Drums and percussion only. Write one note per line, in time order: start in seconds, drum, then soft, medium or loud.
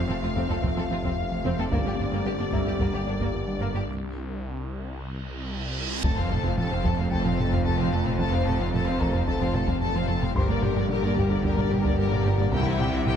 0.36 taiko medium
0.64 taiko medium
1.04 taiko medium
1.72 taiko medium
2.52 taiko medium
2.79 taiko medium
3.20 taiko medium
6.04 taiko medium
6.31 taiko low-mid medium
6.58 taiko low-mid medium
6.85 taiko medium
7.12 taiko medium
7.26 taiko low-mid soft
7.39 taiko low-mid medium
7.52 taiko medium
7.79 taiko low-mid soft
8.06 taiko low-mid medium
8.19 taiko medium
8.46 taiko low-mid medium
8.73 taiko low-mid medium
9.00 taiko medium
9.27 taiko medium
9.41 taiko low-mid medium
9.54 taiko low-mid medium
9.68 taiko medium
9.95 taiko low-mid soft
10.22 taiko low-mid medium
10.36 taiko medium
10.62 taiko low-mid medium
10.89 taiko low-mid medium
11.16 taiko medium
11.44 taiko medium
11.58 taiko low-mid medium
11.71 taiko low-mid medium
11.85 taiko medium
12.12 taiko low-mid medium
12.39 taiko low-mid medium
12.53 taiko loud
12.80 taiko low-mid medium
13.06 taiko low-mid medium